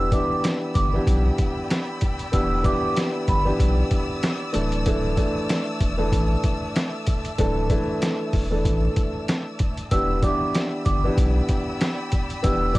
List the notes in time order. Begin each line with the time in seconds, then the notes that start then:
Already playing: E1 E3 B3 D4 G4 D5 G5 B5 E6
0.12 E3 B3 D4 G4 D6, kick, closed hi-hat
0.44 snare, closed hi-hat
0.74 G1 D6, kick, closed hi-hat
0.93 E3 B3 D4 G4
1.07 B1, kick, closed hi-hat
1.38 kick, closed hi-hat
1.70 snare, closed hi-hat
2.01 kick, closed hi-hat
2.19 closed hi-hat
2.32 E1 E3 B3 D4 G4 E6, kick, closed hi-hat
2.63 E3 B3 D4 G4 D6, kick, closed hi-hat
2.96 snare, closed hi-hat
3.28 G1 B5, kick, closed hi-hat
3.45 E3 B3 D4 G4
3.60 B1, kick, closed hi-hat
3.91 kick, closed hi-hat
4.23 snare, closed hi-hat
4.52 D1 E3 A3 D4 A4 E5 A5, closed hi-hat
4.72 closed hi-hat
4.86 E3 A3 D4 A4, kick, closed hi-hat
5.16 E3 A3 D4 A4, kick, closed hi-hat
5.49 snare, closed hi-hat
5.81 E1, kick, closed hi-hat
5.98 E3 A3 D4 A4
6.12 A1, kick, closed hi-hat
6.44 kick, closed hi-hat
6.76 snare, closed hi-hat
7.07 kick, closed hi-hat
7.25 closed hi-hat
7.38 D1 E3 A3 D4 A4, kick, closed hi-hat
7.69 E3 A3 D4 A4, kick, closed hi-hat
8.02 snare, closed hi-hat
8.33 E1, kick, open hi-hat
8.50 E3 A3 D4 A4
8.65 A1, kick, closed hi-hat
8.96 kick, closed hi-hat
9.28 snare, closed hi-hat
9.59 kick, closed hi-hat
9.77 closed hi-hat
9.91 E1 E3 B3 D4 G4 D5 G5 B5 E6, kick, closed hi-hat
10.22 E3 B3 D4 G4 D6, kick, closed hi-hat
10.55 snare, closed hi-hat
10.85 G1 D6, kick, closed hi-hat
11.04 E3 B3 D4 G4
11.18 B1, kick, closed hi-hat
11.49 kick, closed hi-hat
11.81 snare, closed hi-hat
12.12 kick, closed hi-hat
12.30 closed hi-hat
12.42 E1 E3 B3 D4 G4 E6, kick, closed hi-hat
12.74 E3 B3 D4 G4, kick, closed hi-hat